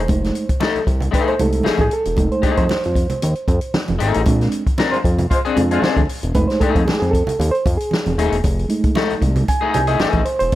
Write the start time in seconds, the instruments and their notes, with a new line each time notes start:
Already playing: reed electric piano C5
0.08 analog synth bass F1, reed electric piano G#3 A3 D#4, kick, closed hi-hat, muted conga
0.24 snare, closed hi-hat
0.35 closed hi-hat
0.49 analog synth bass C2, kick, closed hi-hat
0.60 clean electric guitar A3 D#4 A4, snare, high conga
0.75 analog synth bass C2, closed hi-hat
0.87 analog synth bass C2, kick, closed hi-hat, muted conga
1.01 closed hi-hat, low conga
1.11 clean electric guitar A3 D#4 G#4, reed electric piano B4, kick, closed hi-hat, muted conga
1.28 reed electric piano C5, closed hi-hat
1.39 analog synth bass C2, reed electric piano G#3 A3 D#4 A4, closed hi-hat, muted conga, low conga
1.52 closed hi-hat
1.63 analog synth bass A1, clean electric guitar A3 D#4 G#4, reed electric piano G#4, snare, high conga
1.78 analog synth bass A1, reed electric piano G#4, kick, closed hi-hat, high conga
1.91 reed electric piano A4, closed hi-hat
2.05 analog synth bass E1, closed hi-hat
2.17 analog synth bass F1, reed electric piano G#3 A3 D#4, kick, closed hi-hat, muted conga
2.32 reed electric piano C5, closed hi-hat
2.42 analog synth bass F2, clean electric guitar A3 D#4 G#4, kick, closed hi-hat
2.57 analog synth bass F2, reed electric piano C5, kick, closed hi-hat
2.69 analog synth bass F2, snare, high conga
2.84 analog synth bass F2, closed hi-hat
2.95 kick, closed hi-hat, muted conga
3.10 closed hi-hat, low conga
3.22 analog synth bass D#2, closed hi-hat, muted conga
3.35 closed hi-hat
3.48 analog synth bass F2, kick, closed hi-hat, muted conga
3.61 closed hi-hat
3.74 snare, high conga
3.88 analog synth bass F1, closed hi-hat, high conga
3.99 analog synth bass G#1, clean electric guitar A3 D#4 G#4, closed hi-hat
4.14 analog synth bass A1, closed hi-hat
4.26 analog synth bass A#1, reed electric piano G#3 C4 D4, kick, closed hi-hat, muted conga
4.41 snare, closed hi-hat
4.52 closed hi-hat
4.66 analog synth bass F2, kick, closed hi-hat
4.78 clean electric guitar C4 D4 A#4, snare, high conga
4.91 analog synth bass F2, horn section G#3 F4 C5, closed hi-hat
5.04 analog synth bass F2, kick, closed hi-hat
5.19 closed hi-hat, low conga
5.30 horn section G#3 F4 C5, kick, closed hi-hat, muted conga
5.45 clean electric guitar C4 D4 G#4, closed hi-hat
5.56 analog synth bass F2, reed electric piano G#3 C4 D4, closed hi-hat, muted conga, low conga
5.71 horn section G#3 F4 C5, clean electric guitar C4 D4 G#4, closed hi-hat
5.82 analog synth bass D2, clean electric guitar C4 D4 G#4, snare, high conga
5.97 analog synth bass D2, kick, closed hi-hat, high conga
6.09 open hi-hat
6.23 analog synth bass E1, closed hi-hat
6.35 analog synth bass F1, reed electric piano G#3 A3 D#4 B4, kick, closed hi-hat, muted conga
6.48 reed electric piano C5, snare, closed hi-hat
6.60 analog synth bass F2, clean electric guitar A3 D#4 G#4, reed electric piano A4, kick, closed hi-hat
6.75 analog synth bass F2, kick, closed hi-hat
6.85 analog synth bass F2, reed electric piano G#4, snare, high conga
6.99 analog synth bass F2, reed electric piano G#4, closed hi-hat
7.11 reed electric piano A4, kick, closed hi-hat, muted conga
7.27 closed hi-hat, low conga
7.39 analog synth bass D#2, closed hi-hat, muted conga
7.51 reed electric piano C5, closed hi-hat
7.66 analog synth bass F2, kick, closed hi-hat, muted conga
7.77 reed electric piano G#4, closed hi-hat
7.91 snare, high conga
8.06 analog synth bass F1, closed hi-hat, high conga
8.18 analog synth bass D#1, clean electric guitar A3 D#4 G#4, closed hi-hat
8.32 analog synth bass E1, closed hi-hat
8.44 analog synth bass F1, kick, closed hi-hat, muted conga
8.59 closed hi-hat
8.69 reed electric piano G#3 A3 D#4, closed hi-hat
8.84 analog synth bass C2, kick, closed hi-hat
8.95 clean electric guitar A3 D#4 A4, snare, high conga
9.10 analog synth bass C2, closed hi-hat
9.22 analog synth bass C2, kick, closed hi-hat, muted conga
9.36 closed hi-hat, low conga
9.48 reed electric piano G#5, kick, closed hi-hat, muted conga
9.61 clean electric guitar A3 D#4 G#4
9.74 analog synth bass C2, reed electric piano G#5, closed hi-hat, muted conga, low conga
9.87 clean electric guitar A3 D#4 G#4, reed electric piano D#5, closed hi-hat
9.99 analog synth bass A1, clean electric guitar A3 D#4 G#4, snare, high conga
10.12 analog synth bass A1, kick, closed hi-hat, high conga
10.25 reed electric piano C5, closed hi-hat
10.39 analog synth bass E1, reed electric piano C5, closed hi-hat